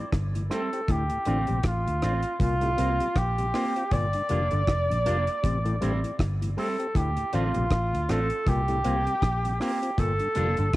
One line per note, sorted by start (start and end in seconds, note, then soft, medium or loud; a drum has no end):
0.00 0.13 D5 loud
0.12 0.48 G1 loud
0.12 kick loud
0.12 cross-stick loud
0.12 closed hi-hat medium
0.35 0.43 A2 medium
0.35 0.43 E3 medium
0.35 closed hi-hat medium
0.50 0.68 G3 medium
0.50 0.62 A3 medium
0.50 0.69 C4 loud
0.50 0.62 C4 medium
0.50 0.69 E4 loud
0.50 0.62 G4 medium
0.50 cross-stick medium
0.50 closed hi-hat medium
0.54 0.92 A4 medium
0.73 0.81 C4 medium
0.73 0.81 G4 medium
0.73 closed hi-hat medium
0.88 1.09 D2 loud
0.88 1.03 A2 medium
0.88 1.65 G4 medium
0.88 kick loud
0.88 closed hi-hat loud
1.10 1.19 D2 medium
1.10 1.19 A2 medium
1.10 closed hi-hat soft
1.25 1.47 A1 medium
1.25 1.41 D3 medium
1.25 1.45 A3 medium
1.25 1.45 C4 medium
1.25 1.38 C4 medium
1.25 1.38 D4 medium
1.25 1.38 F4 medium
1.25 1.45 F4 medium
1.25 closed hi-hat medium
1.47 1.64 A#1 medium
1.47 1.57 D2 medium
1.47 1.57 A2 medium
1.47 1.59 C3 medium
1.47 closed hi-hat soft
1.63 1.85 A1 medium
1.63 2.37 F4 medium
1.63 kick loud
1.63 cross-stick loud
1.63 closed hi-hat loud
1.87 1.95 D2 medium
1.87 2.02 D2 medium
1.87 1.95 A2 medium
1.87 closed hi-hat medium
2.02 2.23 A1 medium
2.02 2.20 A3 medium
2.02 2.14 C4 medium
2.02 2.21 C4 medium
2.02 2.14 D4 medium
2.02 2.14 F4 medium
2.02 2.21 F4 medium
2.02 cross-stick medium
2.02 closed hi-hat medium
2.23 closed hi-hat medium
2.40 2.76 C2 loud
2.40 2.55 A#2 medium
2.40 3.19 F4 loud
2.40 kick loud
2.40 closed hi-hat medium
2.61 2.72 A2 medium
2.61 2.70 C3 medium
2.61 2.71 G3 medium
2.61 closed hi-hat soft
2.77 2.99 C2 medium
2.77 2.92 C3 medium
2.77 2.96 A#3 medium
2.77 2.89 A#3 medium
2.77 2.90 C4 medium
2.77 2.97 C4 medium
2.77 2.90 F4 medium
2.77 2.97 F4 medium
2.77 closed hi-hat medium
3.00 3.08 C3 medium
3.00 3.08 G3 medium
3.00 closed hi-hat medium
3.16 3.52 A#1 loud
3.16 3.95 G4 loud
3.16 kick loud
3.16 cross-stick loud
3.16 closed hi-hat medium
3.38 3.46 C3 medium
3.38 3.46 G3 medium
3.38 closed hi-hat medium
3.54 3.72 A#3 medium
3.54 3.65 A#3 medium
3.54 3.66 C4 medium
3.54 3.72 C4 loud
3.54 3.66 F4 medium
3.54 3.73 F4 medium
3.54 cross-stick medium
3.54 open hi-hat medium
3.76 3.84 C4 medium
3.76 3.85 F4 medium
3.76 closed hi-hat medium
3.91 4.13 G1 medium
3.91 4.06 A#2 medium
3.91 6.20 D5 loud
3.91 kick loud
3.91 closed hi-hat medium
4.13 4.22 G2 medium
4.13 4.22 D3 medium
4.13 closed hi-hat soft
4.29 4.51 F1 loud
4.29 4.44 D3 medium
4.29 4.41 G3 medium
4.29 4.48 A#3 medium
4.29 4.41 A#3 medium
4.29 4.48 D4 medium
4.29 4.41 F4 medium
4.29 4.48 F4 medium
4.29 closed hi-hat medium
4.51 4.67 G1 medium
4.51 4.60 G2 medium
4.51 4.62 D3 medium
4.51 4.60 D3 medium
4.51 closed hi-hat soft
4.67 4.88 F1 loud
4.67 kick loud
4.67 cross-stick loud
4.67 closed hi-hat medium
4.90 5.05 A#1 medium
4.90 4.98 G2 medium
4.90 4.98 D3 medium
4.90 closed hi-hat medium
5.05 5.27 F1 medium
5.05 5.17 G3 medium
5.05 5.24 A#3 medium
5.05 5.17 A#3 medium
5.05 5.24 D4 medium
5.05 5.17 F4 medium
5.05 5.24 F4 loud
5.05 closed hi-hat medium
5.27 closed hi-hat soft
5.43 5.79 A1 loud
5.43 5.58 C3 medium
5.43 kick loud
5.43 closed hi-hat loud
5.65 5.76 A2 medium
5.65 5.74 A2 medium
5.65 5.74 E3 medium
5.65 closed hi-hat soft
5.81 6.03 A1 medium
5.81 5.96 G2 medium
5.81 5.99 G3 loud
5.81 5.93 A3 medium
5.81 5.93 C4 medium
5.81 6.00 C4 medium
5.81 6.00 E4 loud
5.81 5.93 G4 medium
5.81 closed hi-hat medium
6.03 6.12 A2 medium
6.03 6.12 E3 medium
6.03 closed hi-hat soft
6.19 6.55 G1 loud
6.19 kick loud
6.19 cross-stick loud
6.19 closed hi-hat medium
6.41 6.50 A2 medium
6.41 6.50 E3 medium
6.41 closed hi-hat medium
6.57 6.75 G3 medium
6.57 6.68 A3 medium
6.57 6.69 C4 medium
6.57 6.76 C4 medium
6.57 6.76 E4 medium
6.57 6.69 G4 medium
6.57 6.98 A4 medium
6.57 open hi-hat medium
6.79 6.87 C4 medium
6.79 6.87 G4 medium
6.79 closed hi-hat soft
6.95 7.16 D2 loud
6.95 7.10 A2 medium
6.95 7.36 G4 medium
6.95 kick loud
6.95 closed hi-hat loud
7.17 7.25 D2 medium
7.17 7.25 A2 medium
7.17 closed hi-hat soft
7.33 7.54 A1 medium
7.33 7.48 D3 medium
7.33 7.51 A3 loud
7.33 7.45 C4 medium
7.33 7.52 C4 loud
7.33 7.45 D4 medium
7.33 7.45 F4 medium
7.33 8.11 F4 medium
7.33 7.52 F4 loud
7.33 closed hi-hat medium
7.54 7.70 A#1 medium
7.54 7.64 D2 medium
7.54 7.63 A2 medium
7.54 7.65 C3 medium
7.54 closed hi-hat soft
7.70 7.92 A1 loud
7.70 kick loud
7.70 cross-stick loud
7.70 closed hi-hat loud
7.93 8.01 D2 medium
7.93 8.08 D2 medium
7.93 8.01 A2 medium
7.93 closed hi-hat soft
8.09 8.30 A1 medium
8.09 8.27 A3 medium
8.09 8.20 C4 medium
8.09 8.27 C4 medium
8.09 8.20 D4 medium
8.09 8.21 F4 medium
8.09 8.28 F4 loud
8.09 8.50 A4 loud
8.09 cross-stick medium
8.09 closed hi-hat medium
8.30 closed hi-hat medium
8.47 8.83 C2 loud
8.47 8.61 A#2 medium
8.47 9.61 G4 loud
8.47 kick loud
8.47 closed hi-hat medium
8.68 8.79 A2 medium
8.68 8.77 C3 medium
8.68 8.77 G3 medium
8.68 closed hi-hat soft
8.84 9.06 C2 medium
8.84 8.99 C3 medium
8.84 9.03 A#3 medium
8.84 8.96 A#3 medium
8.84 8.96 C4 medium
8.84 9.03 C4 medium
8.84 8.96 F4 medium
8.84 9.03 F4 medium
8.84 closed hi-hat medium
9.07 9.15 C3 medium
9.07 9.15 G3 medium
9.07 closed hi-hat soft
9.22 9.58 A#1 loud
9.22 kick loud
9.22 cross-stick loud
9.22 closed hi-hat medium
9.44 9.53 C3 medium
9.44 9.53 G3 medium
9.44 closed hi-hat medium
9.60 9.78 A#3 medium
9.60 9.72 A#3 medium
9.60 9.72 C4 medium
9.60 9.79 C4 loud
9.60 9.72 F4 medium
9.60 9.79 F4 loud
9.60 10.01 G4 medium
9.60 cross-stick medium
9.60 open hi-hat medium
9.82 9.91 C4 medium
9.82 9.91 F4 medium
9.82 closed hi-hat medium
9.98 10.19 G1 medium
9.98 10.13 A#2 medium
9.98 10.74 A4 loud
9.98 kick loud
9.98 closed hi-hat loud
10.19 10.28 G2 medium
10.19 10.28 D3 medium
10.19 closed hi-hat soft
10.35 10.57 F1 medium
10.35 10.51 D3 medium
10.35 10.48 G3 medium
10.35 10.54 A#3 medium
10.35 10.48 A#3 medium
10.35 10.54 D4 loud
10.35 10.48 F4 medium
10.35 10.55 F4 loud
10.35 closed hi-hat medium
10.57 10.73 G1 loud
10.57 10.66 G2 medium
10.57 10.69 D3 medium
10.57 10.67 D3 medium
10.57 closed hi-hat soft
10.73 closed hi-hat loud